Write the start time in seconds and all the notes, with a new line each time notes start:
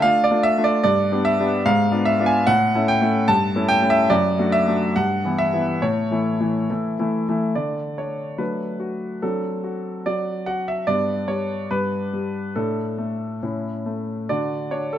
0.02 A3 D4 F4 F5
0.24 D5
0.31 A3 D4 F4
0.43 E5
0.58 A3 D4 F4
0.64 D5
0.84 G2 D5
1.12 B3 D4 G4
1.25 E5
1.40 B3 D4 G4
1.65 G#2 F5
1.91 B3 D4 F4
2.05 E5
2.19 B3 D4 F4
2.26 G#5
2.47 A2 F#5
2.75 A3 C#4 E4
2.88 G5
3.01 A3 C#4 E4
3.28 G2 A5
3.55 A3 C#4 E4
3.68 G5
3.82 A3 C#4 E4
3.90 E5
4.10 F#2 D5
4.39 A3 D4 F#4
4.52 E5
4.68 A3 D4 F#4
4.96 G2 F#5
5.24 E3 B3 E4
5.38 E5
5.53 E3 B3 E4
5.82 A2 C#5
6.11 E3 A3 E4
6.40 E3 A3 E4
6.70 E3 A3 E4
6.99 E3 A3 E4
7.29 E3 A3 E4
7.55 D3 A3 D4 D5
7.98 D4 C#5
8.38 F#3 A3 D4 B4
8.80 F#4
9.22 F#3 C4 D4 A4
9.64 F#4
10.06 F#3 D5
10.46 F#4 F#5
10.68 E5
10.87 G2 B3 D4 D5
11.28 G3 C#5
11.71 G2 B4
12.13 G3
12.56 A2 D4 A4
12.98 A3
13.43 A2 C#4 E4
13.86 A3
14.29 D3 D4 F#4 D5
14.71 D4 C#5
14.93 A4